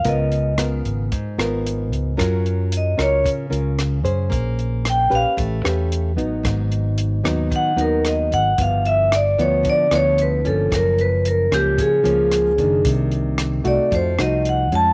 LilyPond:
<<
  \new Staff \with { instrumentName = "Vibraphone" } { \time 4/4 \key ges \major \tempo 4 = 112 ees''4 r2. | r4 ees''8 des''8 r2 | r4 g''8 f''8 r2 | r2 ges''8 bes'8 ees''8 ges''8 |
f''8 e''8 d''8 des''8 d''8 des''8 b'8 a'8 | bes'8 ces''8 bes'8 g'8 aes'2 | r4. d''8 c''8 ees''8 ges''8 a''8 | }
  \new Staff \with { instrumentName = "Nylon-string guitar" } { \time 4/4 \key ges \major << { <ces' f' bes'>4 <ces' f' bes'>4 r8 <ces' f' bes'>4. | <des' f' bes'>4. <des' f' bes'>4 <des' f' bes'>4 <des' aes' c''>8~ | <des' aes' c''>4. <des' g' ces''>4 <cis' g' b'>4 <ges b ees'>8~ | <ges b ees'>4. <ges ces' ees'>4 <ges ces' ees'>4. |
<f b e'>4 r8 <f b e'>4 <f b e'>4 <f bes des'>8~ | <f bes des'>4. <f bes des'>4 <f bes des'>4 <ees bes d'>8~ | <ees bes d'>4. <a ees' ges'>4 <a ees' ges'>4 <aes des' f'>8 | } \\ { des2 aes,2 | ges2 des2 | bes2 a2 | aes,2 ees2 |
g,2 d2 | ges,2 des2 | c2 f2 | } >> }
  \new Staff \with { instrumentName = "Fingered electric bass" } { \clef bass \time 4/4 \key ges \major des,4. aes,,8 r8 aes,,4 des,8 | ges,4. des,8 r8 des,4 ges,8 | bes,,4. bes,,16 r16 a,,8 e,4 a,,8 | aes,,4. ees,8 r8 ees,4 aes,,8 |
g,,4. d,8 r8 d,4 g,,8 | ges,,4. des,8 r8 des,4 ges,,8 | c,4. c,16 r16 f,8 c,4 f,8 | }
  \new DrumStaff \with { instrumentName = "Drums" } \drummode { \time 4/4 <hh bd>8 hh8 <hh ss>8 <hh bd>8 <hh bd>8 <hh ss>8 hh8 <hh bd>8 | <hh bd ss>8 hh8 hh8 <hh bd ss>8 <hh bd>8 hh8 <hh ss>8 <hh bd>8 | <hh bd>8 hh8 <hh ss>8 <hh bd>8 <hh bd>8 <hh ss>8 hh8 <hh bd>8 | <hh bd ss>8 hh8 hh8 <hh bd ss>8 <hh bd>8 hh8 <hh ss>8 <hh bd>8 |
<hh bd>8 hh8 <hh ss>8 <hh bd>8 <hh bd>8 <hh ss>8 hh8 <hh bd>8 | <hh bd ss>8 hh8 hh8 <hh bd ss>8 <hh bd>8 hh8 <hh ss>8 <hh bd>8 | <hh bd>8 hh8 <hh ss>8 <hh bd>8 <hh bd>8 <hh ss>8 hh8 <hh bd>8 | }
>>